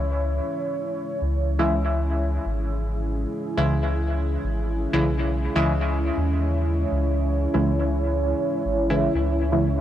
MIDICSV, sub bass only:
0, 0, Header, 1, 2, 480
1, 0, Start_track
1, 0, Key_signature, 4, "minor"
1, 0, Tempo, 495868
1, 1175, Time_signature, 4, 2, 24, 8
1, 9493, End_track
2, 0, Start_track
2, 0, Title_t, "Sub bass"
2, 0, Program_c, 0, 38
2, 0, Note_on_c, 0, 37, 79
2, 391, Note_off_c, 0, 37, 0
2, 1174, Note_on_c, 0, 37, 92
2, 2312, Note_off_c, 0, 37, 0
2, 2375, Note_on_c, 0, 32, 96
2, 3152, Note_off_c, 0, 32, 0
2, 3458, Note_on_c, 0, 37, 79
2, 4232, Note_off_c, 0, 37, 0
2, 4294, Note_on_c, 0, 32, 97
2, 4712, Note_off_c, 0, 32, 0
2, 4774, Note_on_c, 0, 35, 87
2, 5311, Note_off_c, 0, 35, 0
2, 5378, Note_on_c, 0, 37, 78
2, 5912, Note_off_c, 0, 37, 0
2, 5973, Note_on_c, 0, 39, 86
2, 6631, Note_off_c, 0, 39, 0
2, 6694, Note_on_c, 0, 37, 96
2, 7231, Note_off_c, 0, 37, 0
2, 7298, Note_on_c, 0, 37, 79
2, 8072, Note_off_c, 0, 37, 0
2, 8373, Note_on_c, 0, 32, 81
2, 8791, Note_off_c, 0, 32, 0
2, 8853, Note_on_c, 0, 37, 93
2, 9493, Note_off_c, 0, 37, 0
2, 9493, End_track
0, 0, End_of_file